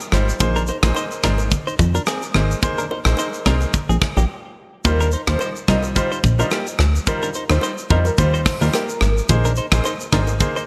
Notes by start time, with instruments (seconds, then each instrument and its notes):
0.00 shaker
0.12 analog synth bass G#1, grand piano G3 D#4 F4 C5, soft synth lead C5, cross-stick, shaker
0.29 shaker
0.40 analog synth bass A#1, grand piano A#3 D#4 G#4 C5, kick, low conga, shaker
0.56 clean electric guitar D4 A#4, shaker
0.67 clean electric guitar D#4 C5, high bongo, shaker
0.83 analog synth bass A#1, grand piano A#3 D#4 G#4 C5, kick, cross-stick, shaker
0.95 clean electric guitar D#4 C5, high bongo, shaker
1.11 shaker
1.23 analog synth bass G#1, grand piano A#3 D#4 G#4 C5, clean electric guitar D4 A#4, kick, cross-stick, low bongo, shaker
1.38 high bongo, shaker
1.51 kick, low conga, shaker
1.67 clean electric guitar D#4 C5, shaker
1.79 analog synth bass F2, kick, low conga, shaker
1.95 clean electric guitar D4 A#4, low bongo, shaker
2.07 clean electric guitar C4 G#4, cross-stick, high bongo, shaker
2.22 shaker
2.34 analog synth bass G#1, grand piano A#3 D#4 G#4 C5, cross-stick
2.51 shaker
2.62 grand piano A#3 D#4 G#4 C5, kick, low conga, shaker
2.78 clean electric guitar D4 A#4, shaker
2.91 clean electric guitar D#4 C5, high bongo, low bongo
3.05 analog synth bass A#1, grand piano A#3 D#4 G#4 C5, cross-stick, shaker
3.17 clean electric guitar D#4 C5, high bongo, shaker
3.34 shaker
3.46 analog synth bass C2, grand piano A#3 D#4 G#4 C5, clean electric guitar D4 A#4, kick, cross-stick, low bongo, shaker
3.60 high bongo, shaker
3.74 kick, low conga, shaker
3.89 analog synth bass A#1, clean electric guitar C4 G#4, shaker
4.01 kick, cross-stick, low conga
4.17 analog synth bass A#1, clean electric guitar A#3 G4, low bongo, shaker
4.85 analog synth bass D#2, grand piano G3 D#4 F4 C5, soft synth lead A#4, kick, low conga, shaker
5.01 clean electric guitar D4 A#4, shaker
5.12 clean electric guitar D#4 C5, shaker
5.27 analog synth bass D#2, grand piano G3 D#4 F4 C5, soft synth lead C5, kick, cross-stick, shaker
5.39 clean electric guitar D#4 C5, high bongo, shaker
5.56 shaker
5.68 analog synth bass C2, grand piano G3 D#4 F4 C5, clean electric guitar D4 A#4, soft synth lead D#5, kick, cross-stick, low bongo, shaker
5.83 high bongo, shaker
5.96 grand piano G3 D#4 F4 C5, soft synth lead C5, kick, low conga, shaker
6.12 clean electric guitar D#4 C5, shaker
6.23 analog synth bass A#1, kick, low conga, shaker
6.39 grand piano G3 D#4 F4 C5, clean electric guitar D4 A#4, soft synth lead D#5, low bongo, shaker
6.51 clean electric guitar A#3 G4, cross-stick, high bongo, shaker
6.67 shaker
6.79 analog synth bass D2, cross-stick, shaker
6.96 shaker
7.07 grand piano G3 D#4 F4 C5, soft synth lead A#4, kick, low conga, shaker
7.23 clean electric guitar D4 A#4, shaker
7.34 clean electric guitar D#4 C5, shaker
7.50 analog synth bass D#2, grand piano G3 D#4 F4 C5, soft synth lead C5, cross-stick, shaker
7.61 clean electric guitar D#4 C5, high bongo, shaker
7.78 shaker
7.90 analog synth bass F2, grand piano G3 D#4 F4 C5, clean electric guitar D4 A#4, soft synth lead D#5, kick, low bongo
8.05 soft synth lead A#4, high bongo, shaker
8.18 analog synth bass D#2, grand piano G3 D#4 F4 C5, soft synth lead C5, kick, low conga, shaker
8.34 clean electric guitar D#4 C5, shaker
8.46 kick, cross-stick, open hi-hat, low conga, shaker
8.61 analog synth bass D#2, grand piano G3 D#4 F4 C5, clean electric guitar D4 A#4, low bongo, shaker
8.73 clean electric guitar A#3 G4, soft synth lead A#4, cross-stick, hi-hat pedal, high bongo, shaker
8.89 shaker
9.01 analog synth bass G#1, cross-stick, shaker
9.18 shaker
9.29 analog synth bass A#1, grand piano A#3 D#4 G#4 C5, kick, low conga, shaker
9.45 clean electric guitar D4 A#4, shaker
9.56 clean electric guitar D#4 C5, shaker
9.72 analog synth bass A#1, grand piano A#3 D#4 G#4 C5, kick, cross-stick, shaker
9.84 clean electric guitar D#4 C5, high bongo, shaker
10.00 shaker
10.12 analog synth bass G#1, grand piano A#3 D#4 G#4 C5, clean electric guitar D4 A#4, kick, cross-stick, low bongo, shaker
10.27 high bongo, shaker
10.40 grand piano A#3 D#4 G#4 C5, kick, low conga, shaker
10.56 clean electric guitar D#4 C5, shaker